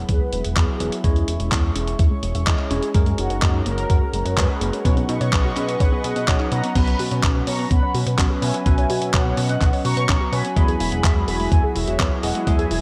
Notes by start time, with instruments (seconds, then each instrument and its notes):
Already playing: tine electric piano F#3 B3 E4 G#4, analog synth pad G#4 E5 F#5 B5
0.09 analog synth bass E2, analog polysynth G#4 B4, synth arpeggio sound B4, kick, closed hi-hat
0.21 synth arpeggio sound G#3
0.32 analog synth bass E1, synth arpeggio sound G#3, analog polysynth G#4 B4, closed hi-hat
0.44 analog synth bass E1, closed hi-hat
0.56 analog synth bass E2, tine electric piano F#3 B3 E4 B4, analog polysynth G#4 B4, kick, clap, closed hi-hat
0.68 synth arpeggio sound F#4
0.80 analog synth bass E1, tine electric piano F#3 B3 E4 G#4, synth arpeggio sound B3, closed hi-hat
0.92 closed hi-hat
1.04 analog synth bass E2, tine electric piano G#3 C#4 E4 C#5, analog polysynth E4 G#4, analog synth pad C#5 C#6, kick, closed hi-hat
1.16 synth arpeggio sound G#3, closed hi-hat
1.28 analog synth bass E1, synth arpeggio sound E4, closed hi-hat
1.40 analog synth bass E1, synth arpeggio sound E5, closed hi-hat
1.52 analog synth bass E2, synth arpeggio sound C#4, kick, clap, closed hi-hat
1.64 synth arpeggio sound G#4
1.75 analog synth bass E1, synth arpeggio sound C#4, closed hi-hat
1.87 synth arpeggio sound G#5, closed hi-hat
1.99 analog synth bass E2, synth arpeggio sound E5, kick, closed hi-hat
2.11 synth arpeggio sound G#3
2.23 analog synth bass E1, synth arpeggio sound G#3, closed hi-hat
2.35 analog synth bass E1, synth arpeggio sound E5, closed hi-hat
2.47 analog synth bass E2, tine electric piano G#3 C#4 E4 D#5, synth arpeggio sound C#4, kick, clap, closed hi-hat
2.59 synth arpeggio sound G#4, clap
2.71 analog synth bass E1, tine electric piano G#3 C#4 E4 C#5, synth arpeggio sound C#4, analog polysynth C#4 G#4, closed hi-hat
2.83 synth arpeggio sound E4, closed hi-hat
2.94 analog synth bass F#2, synth arpeggio sound G#3, tine electric piano G#3 C#4 F#4 A#4, analog synth pad F#5 A#5, kick, closed hi-hat
3.06 synth arpeggio sound G#3, closed hi-hat
3.18 analog synth bass F#1, synth arpeggio sound C#4, analog polysynth D#4 F#4, closed hi-hat
3.30 analog synth bass F#1, synth arpeggio sound A#4, closed hi-hat
3.42 analog synth bass F#2, synth arpeggio sound A#3, kick, clap, closed hi-hat
3.54 synth arpeggio sound F#4
3.66 analog synth bass F#1, synth arpeggio sound A#3, analog polysynth F#4 A#4, closed hi-hat
3.78 synth arpeggio sound C#5, closed hi-hat
3.90 analog synth bass F#2, synth arpeggio sound A#4, kick, closed hi-hat
4.02 synth arpeggio sound G#3
4.13 analog synth bass F#1, synth arpeggio sound G#3, closed hi-hat
4.25 analog synth bass F#1, synth arpeggio sound A#4, closed hi-hat
4.37 analog synth bass F#2, tine electric piano G#3 C#4 F#4 C#5, synth arpeggio sound A#3, analog polysynth G#4 B4, kick, clap, closed hi-hat
4.49 synth arpeggio sound F#4
4.61 analog synth bass F#1, tine electric piano G#3 C#4 F#4 A#4, synth arpeggio sound A#3, closed hi-hat
4.73 synth arpeggio sound C#4, closed hi-hat
4.85 analog synth bass B1, tine electric piano F#3 C#4 D#4 B4, synth arpeggio sound B3, analog polysynth F#4 C#5, analog synth pad B4 D#5 C#6, kick, closed hi-hat
4.97 synth arpeggio sound B3, closed hi-hat
5.09 analog synth bass B2, synth arpeggio sound D#4, analog polysynth G#4 B4, closed hi-hat
5.21 analog synth bass B2, synth arpeggio sound C#5, closed hi-hat
5.33 analog synth bass B1, synth arpeggio sound C#4, kick, clap, closed hi-hat
5.45 synth arpeggio sound F#4
5.56 analog synth bass B2, synth arpeggio sound C#4, clap, closed hi-hat
5.68 synth arpeggio sound D#5, closed hi-hat
5.80 analog synth bass B1, synth arpeggio sound C#5, kick, closed hi-hat
5.92 synth arpeggio sound B3
6.04 analog synth bass B2, synth arpeggio sound B3, analog polysynth D#5 F#5, closed hi-hat
6.16 analog synth bass B2, synth arpeggio sound B3, closed hi-hat
6.28 analog synth bass B1, tine electric piano F#3 C#4 D#4 C#5, synth arpeggio sound C#4, kick, clap, closed hi-hat
6.40 synth arpeggio sound D#4, clap
6.51 analog synth bass B2, synth arpeggio sound B4, analog polysynth F#5 A#5, closed hi-hat
6.64 synth arpeggio sound B3, closed hi-hat
6.75 analog synth bass B1, tine electric piano F#3 B3 C#4 B4, synth arpeggio sound B3, analog synth pad C#4 F#4 B4, analog polysynth F#5 B5, kick, closed hi-hat, crash
6.87 synth arpeggio sound C#5, closed hi-hat
6.99 analog synth bass B2, synth arpeggio sound F#4, open hi-hat
7.11 analog synth bass B2, synth arpeggio sound C#5, closed hi-hat
7.23 analog synth bass B1, synth arpeggio sound A#5, kick, clap, closed hi-hat
7.35 synth arpeggio sound B3
7.47 analog synth bass B2, synth arpeggio sound C#5, analog polysynth A#5 C#6, open hi-hat
7.59 synth arpeggio sound B3, open hi-hat
7.71 analog synth bass B1, synth arpeggio sound B3, analog polysynth F#5 B5, kick, closed hi-hat
7.83 synth arpeggio sound C#5
7.94 analog synth bass B2, synth arpeggio sound F#4, open hi-hat
8.06 analog synth bass B2, synth arpeggio sound B4, closed hi-hat
8.18 analog synth bass B1, tine electric piano F#3 B3 C#4 C#5, synth arpeggio sound C#4, kick, clap, closed hi-hat
8.30 synth arpeggio sound F#4
8.42 analog synth bass B2, tine electric piano F#3 B3 C#4 B4, synth arpeggio sound C#5, analog polysynth E5 G#5, open hi-hat
8.54 synth arpeggio sound B3, closed hi-hat
8.66 analog synth bass B1, tine electric piano F#3 B3 C#4 B4, synth arpeggio sound B3, kick, closed hi-hat
8.78 synth arpeggio sound C#5, closed hi-hat
8.89 analog synth bass B2, synth arpeggio sound F#4, open hi-hat
9.01 analog synth bass B2, synth arpeggio sound C#5, closed hi-hat
9.14 analog synth bass B1, analog polysynth C#5 F#5, synth arpeggio sound A#5, kick, clap, closed hi-hat
9.26 synth arpeggio sound B3
9.37 analog synth bass B2, synth arpeggio sound C#5, analog polysynth D#5 F#5, open hi-hat
9.49 synth arpeggio sound B3, closed hi-hat
9.61 analog synth bass B1, synth arpeggio sound B3, kick, clap, closed hi-hat
9.73 synth arpeggio sound C#5, open hi-hat
9.85 analog synth bass B2, synth arpeggio sound F#4, analog polysynth A#5 C#6, open hi-hat
9.97 analog synth bass B2, synth arpeggio sound B4, closed hi-hat
10.09 analog synth bass B1, tine electric piano F#3 B3 C#4 C#5, synth arpeggio sound C#4, kick, clap, closed hi-hat
10.21 synth arpeggio sound F#4
10.32 analog synth bass B2, tine electric piano F#3 B3 C#4 B4, synth arpeggio sound C#5, analog polysynth G#5 B5, open hi-hat
10.45 synth arpeggio sound B3, closed hi-hat
10.56 analog synth bass E2, tine electric piano F#3 B3 E4 G#4, synth arpeggio sound G#3, analog synth pad E4 G#4, kick, closed hi-hat
10.68 synth arpeggio sound G#4, closed hi-hat
10.80 analog synth bass E1, synth arpeggio sound E4, open hi-hat
10.92 analog synth bass E1, synth arpeggio sound G#4, closed hi-hat
11.04 analog synth bass E2, synth arpeggio sound E5, kick, clap, closed hi-hat
11.16 synth arpeggio sound G#3
11.28 analog synth bass E1, synth arpeggio sound G#4, analog polysynth G#5 B5, open hi-hat
11.40 synth arpeggio sound G#3, open hi-hat
11.52 analog synth bass E2, synth arpeggio sound G#3, analog polysynth E5 G#5, kick, closed hi-hat
11.64 synth arpeggio sound G#4
11.75 analog synth bass E1, synth arpeggio sound E4, analog polysynth C#5 E5, open hi-hat
11.87 analog synth bass E1, synth arpeggio sound F#4, closed hi-hat
11.99 analog synth bass E2, tine electric piano F#3 B3 E4 B4, synth arpeggio sound B3, kick, clap, closed hi-hat
12.11 synth arpeggio sound E4
12.23 analog synth bass E1, tine electric piano F#3 B3 E4 G#4, synth arpeggio sound G#4, analog polysynth D#5 F#5, open hi-hat
12.35 synth arpeggio sound G#3, closed hi-hat
12.47 analog synth bass E2, tine electric piano F#3 B3 E4 G#4, synth arpeggio sound G#3, analog polysynth E5 G#5, kick, closed hi-hat
12.59 synth arpeggio sound G#4, closed hi-hat
12.71 analog synth bass E1, synth arpeggio sound E4, open hi-hat